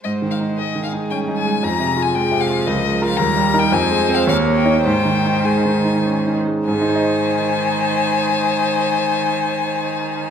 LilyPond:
<<
  \new Staff \with { instrumentName = "Violin" } { \time 3/4 \key aes \major \tempo 4 = 102 ees''8 f''8 ees''8 f''8 g''8 aes''8 | bes''8. aes''16 g''8 f''8 ees''8. f''16 | bes''8. g''16 aes''8. f''16 f''8 g''8 | g''4 aes''4. r8 |
aes''2.~ | aes''2. | }
  \new Staff \with { instrumentName = "Violin" } { \time 3/4 \key aes \major c''4 aes'2 | aes'2 bes'4 | bes'4 c''4 des''4 | c''2~ c''8 r8 |
c''2.~ | c''2. | }
  \new Staff \with { instrumentName = "Grand piano" } { \clef bass \time 3/4 \key aes \major \tuplet 3/2 { aes,8 ees8 ees'8 aes8 ees8 ees'8 des'8 ees'8 aes8 } | \tuplet 3/2 { f,8 c8 f'8 aes8 c8 f'8 des,8 aes8 <f' bes'>8 } | \tuplet 3/2 { ees,8 g8 <ees' bes'>8 f,8 aes8 <c' c''>8 ees,8 bes8 <ees' des''>8 } | \tuplet 3/2 { aes,8 ees8 ees'8 aes8 ees8 ees'8 des'8 ees'8 aes8 } |
<aes, aes ees' c'' ees''>2.~ | <aes, aes ees' c'' ees''>2. | }
  \new Staff \with { instrumentName = "Cello" } { \clef bass \time 3/4 \key aes \major aes2 g4 | f4 f2 | g4 aes4 bes4 | ees2~ ees8 r8 |
ees2.~ | ees2. | }
>>